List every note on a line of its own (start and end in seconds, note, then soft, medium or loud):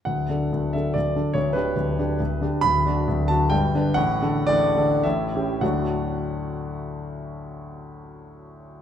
0.05 0.28 D1 soft
0.05 0.28 D2 soft
0.05 0.73 F#5 medium
0.30 0.50 D3 soft
0.30 0.50 D4 soft
0.30 0.50 A4 soft
0.52 0.74 D1 soft
0.52 0.74 D2 soft
0.73 0.93 D3 soft
0.73 0.94 D4 soft
0.73 0.94 A4 soft
0.73 0.95 E5 medium
0.94 1.16 D1 soft
0.94 1.16 D2 soft
0.94 1.35 D5 medium
1.16 1.34 D3 soft
1.16 1.34 D4 soft
1.16 1.35 A4 soft
1.34 1.55 D1 soft
1.34 1.55 D2 soft
1.34 1.55 C#5 medium
1.53 1.75 D3 soft
1.53 1.75 D4 soft
1.53 1.75 G4 soft
1.53 2.63 B4 medium
1.76 1.98 D1 soft
1.76 1.98 D2 soft
1.98 2.18 D3 soft
1.98 2.18 D4 soft
1.98 2.18 G4 soft
2.20 2.42 D1 soft
2.20 2.42 D2 soft
2.41 2.62 D3 soft
2.41 2.62 D4 soft
2.41 2.63 G4 soft
2.61 2.85 D1 medium
2.61 2.85 D2 medium
2.61 3.28 B5 loud
2.86 3.05 D3 soft
2.86 3.06 D4 soft
2.86 3.06 F#4 soft
3.08 3.30 D1 medium
3.08 3.30 D2 medium
3.28 3.50 D3 soft
3.28 3.51 D4 soft
3.28 3.51 F#4 soft
3.28 3.52 A5 medium
3.50 3.74 G1 medium
3.50 3.74 G2 medium
3.50 3.96 G5 medium
3.75 3.95 D3 soft
3.75 3.96 D4 soft
3.75 3.96 B4 soft
3.94 4.20 A1 medium
3.94 4.20 A2 medium
3.94 4.46 F#5 loud
4.22 4.46 D3 soft
4.22 4.46 D4 soft
4.22 4.46 A4 medium
4.47 4.75 A1 medium
4.47 4.75 A2 medium
4.47 5.03 D5 loud
4.77 5.02 D3 soft
4.77 5.02 D4 soft
4.77 5.02 A4 soft
5.03 5.33 A1 medium
5.03 5.33 A2 medium
5.03 5.62 E5 medium
5.35 5.60 E3 soft
5.35 5.60 C#4 soft
5.35 5.61 G4 soft
5.61 8.82 D2 medium
5.61 8.82 A2 soft
5.61 8.82 F#3 soft
5.61 8.82 A3 soft
5.61 8.82 D4 soft
5.61 8.82 F#4 soft
5.61 8.82 F#5 medium